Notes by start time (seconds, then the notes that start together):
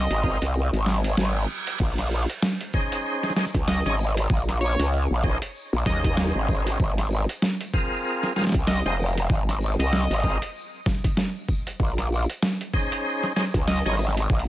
Already playing: D#5
0.10 G#1, closed hi-hat
0.24 C4 F4 G#4 A#4, kick, tambourine
0.42 C2, closed hi-hat, tambourine
0.55 tambourine, reverse cymbal
0.73 G#1, closed hi-hat, tambourine
0.86 snare, tambourine
1.04 closed hi-hat, tambourine
1.17 G#1, snare, tambourine
1.35 tambourine
1.49 tambourine
1.66 closed hi-hat, tambourine
1.79 A#1, kick, tambourine, crash
1.98 snare, closed hi-hat, tambourine
2.12 tambourine
2.29 closed hi-hat, tambourine
2.42 snare, tambourine
2.60 closed hi-hat, tambourine
2.73 C#4 D#4 G#4 C5, kick, tambourine
2.92 closed hi-hat, tambourine
3.06 tambourine
3.23 snare, tambourine
3.30 snare
3.36 C#4 D#4 G#4 C5, snare, tambourine
3.46 snare
3.55 C#2, kick, closed hi-hat, tambourine
3.67 D#5, snare, tambourine
3.86 G#1 C#4 D#4 G#4 C#5 D#5, snare, tambourine
3.98 tambourine
4.17 closed hi-hat, tambourine
4.30 A#1, kick, tambourine
4.49 snare, closed hi-hat, tambourine
4.61 C#5, tambourine
4.79 C#2, closed hi-hat, tambourine
4.93 tambourine
5.11 A#1, tambourine
5.24 C#4 D#4 G#4 C5, kick, tambourine
5.42 closed hi-hat, tambourine
5.55 tambourine
5.73 A#1, tambourine
5.86 D#2 C#4 D#4 G#4 C5 D#5, kick, snare, tambourine
6.04 D#5, kick, closed hi-hat, tambourine
6.17 snare, tambourine
6.35 G#1, tambourine
6.49 kick, tambourine
6.67 closed hi-hat, tambourine
6.80 G#1, kick, tambourine
6.98 snare, closed hi-hat, tambourine
7.11 tambourine
7.29 closed hi-hat, tambourine
7.42 snare, tambourine
7.61 closed hi-hat, tambourine
7.74 C4 F4 G#4 A#4, kick, tambourine
7.92 tambourine
8.04 tambourine
8.23 snare, tambourine
8.36 C4 F4 G#4 A#4, snare, tambourine
8.39 snare
8.41 snare
8.44 snare
8.47 snare
8.49 snare
8.52 C2, kick, snare, closed hi-hat, tambourine
8.67 D#5, snare, tambourine
8.86 F1 C4 F4 G#4 C5 D#5, snare, tambourine
9.00 tambourine
9.17 closed hi-hat, tambourine
9.30 G#1, kick, tambourine
9.48 snare, closed hi-hat, tambourine
9.61 tambourine
9.79 C2 D#5, closed hi-hat, tambourine
9.93 snare, tambourine
10.10 G#1, closed hi-hat, tambourine
10.14 closed hi-hat
10.20 C4 F4 G#4 A#4, kick, closed hi-hat, tambourine
10.24 closed hi-hat
10.30 closed hi-hat
10.34 closed hi-hat
10.42 closed hi-hat, tambourine
10.55 tambourine
10.74 tambourine
10.86 kick, snare, tambourine
11.04 kick, closed hi-hat, tambourine
11.17 snare, tambourine
11.36 tambourine
11.48 kick, tambourine
11.67 closed hi-hat, tambourine
11.80 A#1, kick, tambourine
11.98 snare, closed hi-hat, tambourine
12.12 tambourine
12.30 closed hi-hat, tambourine
12.43 snare, tambourine
12.61 closed hi-hat, tambourine
12.74 C#4 D#4 G#4 C5, kick, tambourine
12.92 closed hi-hat, tambourine
13.05 tambourine
13.23 snare, tambourine
13.36 C#4 D#4 G#4 C5, snare, tambourine
13.54 C#2, kick, closed hi-hat
13.68 D#5, snare, tambourine
13.85 G#1 C#4 D#4 G#4 C#5 D#5, snare, tambourine
13.92 snare
13.99 snare, tambourine
14.08 snare
14.17 closed hi-hat, tambourine
14.30 A#1, kick, tambourine
14.39 closed hi-hat